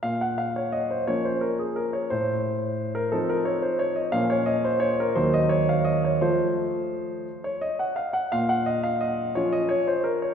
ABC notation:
X:1
M:6/8
L:1/16
Q:3/8=58
K:Bbm
V:1 name="Grand piano"
f g f d e c d c B A B d | c4- c B =A B d c d e | f d e c d B c e d f e d | c6- c d e g f g |
f g e f e2 d e d c B d |]
V:2 name="Grand piano"
B,,6 [F,B,D]6 | =A,,6 [F,CE]6 | [B,,F,B,D]6 [E,,G,B,E]6 | [F,=A,F]6 z6 |
B,,6 [F,DF]6 |]